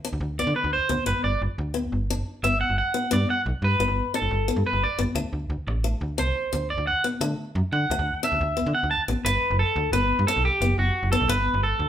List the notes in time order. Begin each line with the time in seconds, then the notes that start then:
0.05 D4
0.13 D2
0.21 D2
0.39 B3 D5
0.47 D3
0.56 B4
0.64 D2
0.73 C5
0.89 D2 B3
1.06 G1 B3 B4
1.24 G1 D5
1.42 G1
1.58 D2
1.74 B3
1.92 G1
2.10 F#1 D4
2.43 G1 B3 E5
2.61 F#5
2.70 G1
2.78 F#5
2.94 B3
3.11 G2 B3 D5
3.30 F#5
3.46 B1
3.62 G2 B4
3.80 G1 B3
3.88 G1
4.14 D4 A4
4.22 G1
4.31 G1
4.48 B3
4.56 G2
4.66 B4
4.73 G1
4.84 D5
4.99 G1 B3
5.15 D2 A3
5.33 D2
5.50 D2
5.67 A1, muted clean electric guitar stroke
5.84 A3
6.01 D2
6.18 C2 D4 C5
6.53 D2 D4
6.70 D5
6.78 D2
6.87 F#5
7.04 B3
7.21 D3 A3
7.55 F#2
7.72 D3 F#5
7.90 D2 A3
7.99 D2
8.23 D4 E5
8.32 D2
8.41 D2
8.57 B3
8.66 D3
8.75 F#5
8.83 D2
8.91 A5
9.08 A1 B3
9.25 G1 B4, muted steel-string acoustic guitar stroke
9.50 F#1
9.59 A4
9.76 D2
9.92 G1 B3 B4
10.19 G2
10.27 D4 A4
10.37 B1
10.45 G4
10.61 F#1 B3
10.78 F#1 F#4
11.03 F#1
11.12 B3 A4
11.21 B1
11.28 G1 B3 B4
11.54 G1
11.63 A4
11.79 D2